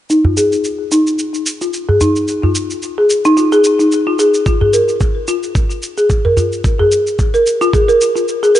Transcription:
0.10 D#4, cabasa
0.25 F4, udu
0.37 G#4, cabasa
0.52 cabasa
0.64 cabasa
0.92 D#4, cabasa
1.07 cabasa
1.19 cabasa
1.34 cabasa
1.46 cabasa
1.61 F4, cabasa
1.73 cabasa
1.89 G#4, udu
2.01 D#4, udu, cabasa
2.16 cabasa
2.28 cabasa
2.43 F4, udu
2.55 cabasa
2.70 cabasa
2.82 cabasa
2.98 G#4
3.10 cabasa
3.25 D#4, cabasa
3.37 F4, cabasa
3.52 G#4, cabasa
3.64 cabasa
3.79 D#4, cabasa
3.92 cabasa
4.07 F4
4.19 G#4, cabasa
4.34 cabasa
4.46 F4, kick, cabasa
4.61 G#4, udu
4.73 A#4, cabasa
4.88 cabasa
5.00 kick, cabasa
5.28 F4, cabasa
5.43 cabasa
5.55 kick, cabasa
5.70 cabasa
5.82 cabasa
5.98 G#4, cabasa
6.10 kick, cabasa
6.25 A#4, udu
6.37 F4, udu, cabasa
6.52 cabasa
6.64 kick, cabasa
6.79 G#4, udu
6.92 cabasa
7.07 cabasa
7.19 kick, cabasa
7.34 A#4, cabasa
7.46 cabasa
7.61 F4, cabasa
7.73 G#4, kick, cabasa
7.88 A#4, cabasa
8.01 cabasa
8.16 F4, cabasa
8.28 cabasa
8.43 G#4, cabasa
8.55 A#4, cabasa

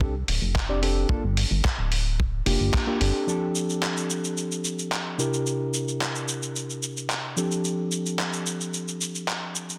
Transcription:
Already playing: C2
0.00 C4 D4 G4 A4, kick
0.28 D1, open hi-hat
0.42 F1
0.55 kick, clap
0.69 C4 D4 G4 D5
0.82 C4 D4 G4 A4, open hi-hat
1.09 G1 A#3 D4 F4 A4, kick
1.24 G1
1.37 open hi-hat
1.51 G1
1.65 kick, clap
1.78 D1
1.92 open hi-hat
2.20 kick
2.46 F1 A#3 D4 F4 G4, open hi-hat
2.60 G1
2.74 kick, clap
2.87 A#3 D4 F4 G4
3.00 G1 C4 D4 G4 A4, open hi-hat
3.27 F3 C4 D4 G4 A4, shaker
3.55 shaker
3.70 shaker
3.83 clap, shaker
3.97 shaker
4.10 shaker
4.24 shaker
4.37 shaker
4.52 shaker
4.65 shaker
4.79 shaker
4.92 clap, shaker
5.18 C3 D4 E4 G4 A#4, shaker
5.33 shaker
5.47 shaker
5.74 shaker
5.88 shaker
6.01 clap, shaker
6.15 shaker
6.28 shaker
6.42 shaker
6.56 shaker
6.70 shaker
6.83 shaker
6.97 shaker
7.10 clap, shaker
7.36 F3 C4 D4 G4 A4, shaker
7.51 shaker
7.65 shaker
7.92 shaker
8.06 shaker
8.19 clap, shaker
8.33 shaker
8.47 shaker
8.61 shaker
8.74 shaker
8.88 shaker
9.01 shaker
9.15 shaker
9.28 clap, shaker
9.56 shaker
9.69 shaker

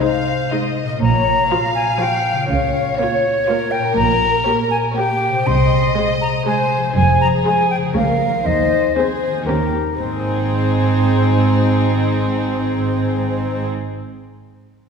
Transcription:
Already playing: C3 C4 D#4 G#4 C5 D#5
0.01 G#3 D#4 C5 F5
0.51 G#3 D#4 C5 D#5
0.83 A#2
0.87 C#4
0.92 F4
0.96 A#4
1.01 A#1 A#2 C#5 A#5
1.49 F3 F4 C#5 F5
1.75 G#5
2.00 F3 F4 C#5 G5
2.31 C#3
2.36 C#4
2.40 F4
2.45 A#4 F5
2.49 C#2 C#3 C#5
2.97 A#3 F4 C#5
3.47 A#3 F4 A#4 C#5
3.71 G5
3.79 A#2
3.83 C#4
3.88 G4
3.92 C#5 A#5
3.97 A#1 A#2
4.45 A#3 G4 C#5
4.71 G#5
4.94 A#3 G4 C#5 G5
5.28 C3
5.33 C4
5.37 G#4
5.42 D#5
5.47 C2 C3 D#5 C6
5.96 G#3 G#4 C5
6.22 A#5
6.46 G#3 G#4 C5 G#5
6.77 F3
6.81 C4
6.86 G#4
6.91 F2 C5
6.96 F1 G#4 G#5
7.21 A#5
7.45 G#3 G#4 C5 G#5
7.71 G5
7.77 C#3
7.82 C#4
7.86 G#4
7.91 C#2 A#4 C#5
7.95 C#2 A#3 G#4 A#4 F5
8.28 D#3
8.32 C4
8.37 G#4
8.41 C5
8.45 D#2 D#5
8.96 C4 G#4 C5
9.29 D#3
9.33 A#3
9.38 G4
9.42 C#5
9.46 D#2 C#4 G4 A#4
9.97 G#1 G#2 C4 D#4 G#4 C5
10.05 G#3
10.12 G#4
10.19 D#5
10.26 G#5

